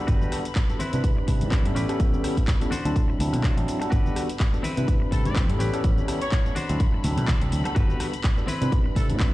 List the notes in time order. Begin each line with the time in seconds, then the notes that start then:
Already playing: G3 B3 D4 F#4 A4 B5
0.07 G1 F#4 G4 B4, kick, closed hi-hat, shaker
0.22 tambourine, high conga, shaker
0.32 G3 B3 D4 F#4 A4, cross-stick, open hi-hat, tambourine, shaker
0.45 closed hi-hat, tambourine, shaker
0.55 kick, clap, closed hi-hat, shaker
0.69 G3 B3 D4 F#4 A4, muted clean electric guitar stroke, shaker
0.79 C4 E4 B4, open hi-hat, tambourine, high conga, shaker
0.93 C3 G3 C4 D4 E4 B4, closed hi-hat, tambourine, shaker
1.04 kick, closed hi-hat, tambourine, shaker
1.17 muted clean electric guitar stroke, tambourine
1.27 C2 G3 C4 D4 E4 B4, muted clean electric guitar stroke, kick, open hi-hat, tambourine, shaker
1.41 A2, closed hi-hat, tambourine, high conga, shaker
1.51 C2 C4 E4 B4, kick, clap, closed hi-hat, shaker
1.65 G2 G3 B3 C#4 E4 A4, closed hi-hat, tambourine
1.75 A1 C#4 G4 B4, open hi-hat, tambourine, shaker
1.89 G3 B3 C#4 E4 A4, cross-stick, closed hi-hat, shaker
2.00 A1, kick, closed hi-hat, shaker
2.13 tambourine, high conga, shaker
2.23 G3 B3 C#4 E4 A4, cross-stick, open hi-hat, tambourine, shaker
2.37 kick, closed hi-hat, tambourine, shaker
2.48 kick, clap, closed hi-hat, shaker
2.60 G3 B3 C#4 E4 A4, muted clean electric guitar stroke, closed hi-hat, tambourine, shaker
2.71 D4 F#4 C5, muted fingered electric bass stroke, open hi-hat, tambourine, high conga, shaker
2.85 D2 F#3 C4 D4 E4 A4, closed hi-hat, shaker
2.96 kick, closed hi-hat, tambourine, shaker
3.08 muted clean electric guitar stroke, tambourine
3.19 D2 F#3 C4 D4 E4 A4, muted clean electric guitar stroke, open hi-hat, tambourine, low conga, shaker
3.33 B2, closed hi-hat, tambourine, high conga, shaker
3.43 D4 F#4 C5, kick, clap, closed hi-hat, tambourine, shaker
3.57 A1 F#3 C4 D4 E4 A4, closed hi-hat, tambourine, shaker
3.67 muted clean electric guitar stroke, open hi-hat, tambourine, shaker
3.80 G3 B3 D4 F#4 A4, muted clean electric guitar stroke, cross-stick, closed hi-hat, tambourine, shaker
3.90 G1 F#4 G4 B4 B5, kick, closed hi-hat, shaker
4.05 tambourine, high conga, shaker
4.15 G3 B3 D4 F#4 A4, cross-stick, open hi-hat, tambourine, shaker
4.29 closed hi-hat, tambourine, shaker
4.40 kick, clap, closed hi-hat, shaker
4.52 G3 B3 D4 F#4 A4, muted clean electric guitar stroke, tambourine, shaker
4.63 C4 E4 B4, open hi-hat, tambourine, high conga, shaker
4.77 C3 G3 C4 D4 E4 B4, closed hi-hat, tambourine, shaker
4.88 kick, closed hi-hat, tambourine, shaker
5.00 muted clean electric guitar stroke, tambourine
5.11 C2 G3 C4 D4 E4 A4 B4, muted clean electric guitar stroke, kick, open hi-hat, tambourine, shaker
5.25 A2 D5, closed hi-hat, tambourine, high conga, shaker
5.35 C2 C4 E4 G4, kick, clap, closed hi-hat, tambourine, shaker
5.49 G2 G3 B3 C#4 E4 A4, closed hi-hat, tambourine
5.59 A1 C#4 G4 B4, open hi-hat, tambourine, shaker
5.73 G3 B3 C#4 E4 A4, cross-stick, closed hi-hat, tambourine, shaker
5.84 A1, kick, closed hi-hat, tambourine, shaker
5.97 tambourine, high conga, shaker
6.08 G3 B3 C#4 E4 A4, cross-stick, open hi-hat, tambourine, shaker
6.21 C#5, closed hi-hat, tambourine, shaker
6.32 kick, clap, closed hi-hat, shaker
6.45 G3 B3 C#4 E4 A4, muted clean electric guitar stroke, tambourine, shaker
6.55 D4 F#4 C5, muted fingered electric bass stroke, open hi-hat, tambourine, high conga, shaker
6.69 D2 F#3 C4 D4 E4 A4, closed hi-hat, tambourine, shaker
6.80 kick, closed hi-hat, tambourine, shaker
6.92 muted clean electric guitar stroke, tambourine
7.03 D2 F#3 C4 D4 E4 A4, muted clean electric guitar stroke, open hi-hat, tambourine, low conga, shaker
7.17 B2, closed hi-hat, tambourine, high conga, shaker
7.27 D2 D4 F#4 C5, kick, clap, closed hi-hat, tambourine, shaker
7.41 C2 F#3 C4 D4 E4 A4, closed hi-hat, tambourine
7.51 D2, muted clean electric guitar stroke, open hi-hat, tambourine, shaker
7.64 G3 B3 D4 F#4 A4, muted clean electric guitar stroke, cross-stick, closed hi-hat, tambourine, shaker
7.75 G1 F#4 G4 B4, kick, closed hi-hat, tambourine, shaker
7.88 tambourine, high conga, shaker
7.99 G3 B3 D4 F#4 A4, cross-stick, open hi-hat, tambourine, shaker
8.14 closed hi-hat, tambourine, shaker
8.24 kick, clap, closed hi-hat, shaker
8.37 G3 B3 D4 F#4 A4, muted clean electric guitar stroke, tambourine, shaker
8.47 C4 E4 B4, open hi-hat, tambourine, high conga, shaker
8.61 C3 G3 C4 D4 E4 B4, closed hi-hat, tambourine, shaker
8.72 kick, closed hi-hat, shaker
8.84 muted clean electric guitar stroke, tambourine
8.95 C2 G3 C4 D4 E4 A4 B4, muted clean electric guitar stroke, kick, open hi-hat, tambourine, shaker
9.08 A2, closed hi-hat, tambourine, high conga, shaker
9.19 C2 C4 E4 B4, kick, clap, closed hi-hat, shaker